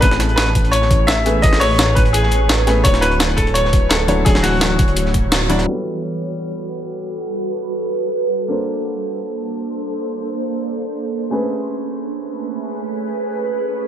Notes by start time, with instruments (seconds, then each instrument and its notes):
0.01 detuned saw bass A1, felt piano A3 C#4 G#4 B4, ambient pad G#4 B4 C#5, grand piano B4, kick, closed hi-hat
0.11 snare
0.20 snare, closed hi-hat
0.29 closed hi-hat
0.36 grand piano B4, snare, closed hi-hat
0.47 closed hi-hat
0.55 kick, closed hi-hat
0.64 closed hi-hat
0.71 grand piano C#5, closed hi-hat
0.82 snare
0.91 kick, closed hi-hat
1.07 grand piano E5, snare, closed hi-hat
1.25 felt piano A3 C#4 G#4 B4, closed hi-hat
1.42 detuned saw bass A1, felt piano A3 C#4 G#4 B4, grand piano D#5, kick, closed hi-hat
1.52 snare
1.60 grand piano C#5, snare, closed hi-hat, open hi-hat
1.78 snare, closed hi-hat
1.95 grand piano B4, kick, closed hi-hat
2.05 closed hi-hat
2.13 grand piano G#4, closed hi-hat
2.23 snare
2.31 closed hi-hat
2.49 snare, closed hi-hat
2.66 felt piano A3 C#4 G#4 B4, snare, closed hi-hat
2.83 detuned saw bass D1, ambient pad E3 F#4, felt piano F#3 D4 E4 C#5, grand piano C#5, kick, closed hi-hat
2.94 snare
3.01 grand piano B4, snare, closed hi-hat
3.11 closed hi-hat
3.20 snare, closed hi-hat
3.30 closed hi-hat
3.36 grand piano A4, kick, closed hi-hat
3.47 closed hi-hat
3.54 grand piano C#5, closed hi-hat
3.65 snare
3.73 kick, closed hi-hat
3.89 grand piano A4, snare, closed hi-hat
4.07 felt piano F#3 D4 E4 C#5, closed hi-hat
4.25 detuned saw bass D1, felt piano F#3 D4 E4 C#5, grand piano G#4, kick, closed hi-hat
4.35 snare
4.43 grand piano F#4, snare, closed hi-hat, open hi-hat
4.61 snare, closed hi-hat
4.79 kick, closed hi-hat
4.88 closed hi-hat
4.96 closed hi-hat
5.06 snare
5.14 kick, closed hi-hat
5.32 detuned saw bass D1, snare, closed hi-hat
5.49 felt piano F#3 D4 E4 D5, closed hi-hat
5.59 snare, closed hi-hat
5.66 felt piano G3 B3 F#4 A4, ambient pad G3 F#4 A4 B4
8.48 felt piano A#3 D4 A4 C5, ambient pad A#3 D4 C5
11.30 felt piano A3 C#4 G#4 B4, ambient pad A3 C#4 G#4 B4